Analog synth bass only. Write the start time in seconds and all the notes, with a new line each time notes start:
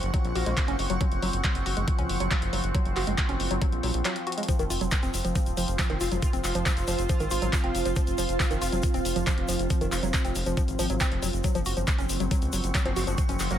0.03 F#1
0.25 A#1
0.35 A#1
0.46 A#1
0.68 F#1
0.79 F#1
0.90 F#1
1.12 F#1
1.22 F#1
1.33 F#1
1.55 F#1
1.66 F#1
1.77 F#1
1.99 C#2
2.09 F#1
2.20 F#1
2.42 F#1
2.53 F#1
2.64 F#1
2.86 F#1
2.96 F#1
3.07 F#1
3.29 F#1
3.40 F#1
3.51 F#1
3.72 A#1
3.83 A#1
3.94 A#1
4.59 F1
4.70 F1
4.81 F1
5.03 F1
5.14 F1
5.25 F1
5.46 D#1
5.57 F1
5.68 F1
5.90 F1
6.01 F1
6.12 F1
6.33 F1
6.44 F1
6.55 F1
6.77 F1
6.88 F1
6.99 F1
7.20 G#1
7.31 G#1
7.42 G#1
7.64 F1
7.75 F1
7.86 F1
8.07 F1
8.18 F1
8.29 F1
8.51 F1
8.62 F1
8.72 F1
8.94 D#1
9.05 F1
9.16 F1
9.38 F1
9.49 F1
9.59 F1
9.81 F1
9.92 F1
10.03 F1
10.25 F1
10.35 F1
10.46 F1
10.68 G#1
10.79 G#1
10.90 G#1
11.12 F1
11.22 F1
11.33 F1
11.55 F#1
11.66 F#1
11.77 F#1
11.99 F#1
12.09 F#1
12.20 F#1
12.42 C#2
12.53 F#1
12.64 F#1
12.86 F#1
12.96 F#1
13.07 F#1
13.29 F#1
13.40 F#1
13.51 F#1